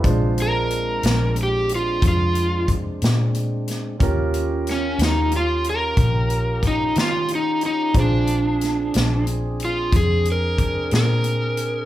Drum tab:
HH |xxxxxxxxxxxx|xxxxxxxxxxxx|xxxxxxxxxxxx|
SD |---o-----o-o|--oo-----o--|--oo-----o--|
BD |o-----o-o---|o-----o-o---|o-----o-o---|